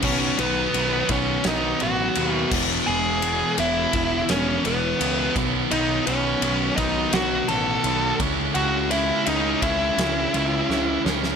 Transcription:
0.02 B1 B2 D#3 F#3 B3 C#4 D#4 C#5, kick, crash
0.39 B1 B2 D#3 F#3 B3 D#4 B4, ride
0.74 B1 B2 D#3 F#3 B3 D#4, ride
1.09 B1 B2 D#3 F#3 B3 C#4 D#4 C#5, kick, ride
1.44 B1 B2 D#3 F#3 B3 D#4, snare, ride
1.48 D#5
1.80 A1 B2 D#3 F#3 B3 D#4 F#4 F#5, ride
2.15 D#2 B2 D#3 F#3 B3 D#4, ride
2.32 E5
2.52 E1 E2 B2 E3 G#3 B3 E4, kick, snare, crash
2.87 E1 E2 B2 E3 G#3 B3 E4 G#4 G#5
3.22 E2 B2 E3 G#3 B3 E4, ride
3.58 E1 E2 B2 E3 G#3 B3 E4 E5, ride
3.93 E1 E2 B2 E3 G#3 B3 E4, kick, ride
4.29 E1 E2 B2 E3 G#3 B3 C#4 E4 C#5, snare, ride
4.65 E1 E2 B2 E3 G#3 B3 E4 B4, ride
5.00 C#2 E2 B2 E3 G#3 B3 E4, ride
5.36 B1 B2 D#3 F#3 B3 D#4, kick, snare, ride
5.71 B1 B2 D#3 F#3 B3 D#4 D#5, ride
6.07 B1 B2 D#3 F#3 B3 C#4 D#4 C#5, ride
6.42 B1 B2 D#3 F#3 B3 D#4, ride
6.76 B1 B2 D#3 F#3 B3 D#4 D#5, kick, ride
7.13 B1 B2 D#3 F#3 B3 D#4 F#4 F#5, snare, ride
7.48 A1 B2 D#3 F#3 B3 D#4 A4 A5, ride
7.84 B1 B2 D#3 F#3 B3 D#4, ride
8.20 C#2 C#3 G#3 C#4 E4, kick, snare, ride
8.55 C#2 C#3 G#3 C#4 E4 F#4 F#5, ride
8.91 C#3 G#3 C#4 E4 E5, ride
9.26 C#2 C#3 G#3 C#4 D#4 E4 D#5, ride
9.62 C#2 C#3 G#3 C#4 E4 E5, kick, ride
9.98 C#2 C#3 G#3 C#4 E4, snare, ride
10.34 C#2 C#3 G#3 C#4 E4, ride
10.69 C#2 C#3 G#3 C#4 E4, snare
11.05 C#2 C#3 G#3 C#4 E4, snare
11.23 snare

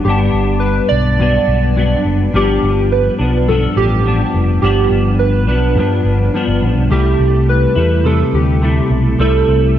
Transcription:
0.04 G1 G2 B3 G4
0.09 D4
0.33 G1
0.60 B4
0.89 B1 D5
1.19 G2 F#3 B3 D4
1.48 B1
1.75 G2 F#3 B3 D4
2.05 F#1
2.33 G1 G2 F3 B3 D4 G4
2.62 G1
2.92 B4
3.19 B1 F3 B3 D4
3.48 G2 F3 B3 D4 A4
3.77 A1 G4
4.05 G2 F3 B3 D4
4.34 F1
4.62 G1 G2 F3 B3 D4 G4
4.90 G1
5.19 B4
5.47 B1 F3 B3 D4 B4
5.76 G2 F3 B3 D4
6.04 G1
6.33 G2 F3 B3 D4
6.48 G1
6.62 A1
6.77 B1
6.90 C2 C3 G3 A3 E4 G4
7.19 C2
7.49 B4
7.75 E2 G3 A3 E4
8.04 C3 G3 A3 E4 A4
8.33 D2 G4
8.61 C3 G3 A3 E4
8.90 B1
9.19 C2 C3 G3 A3 E4 A4
9.48 C2

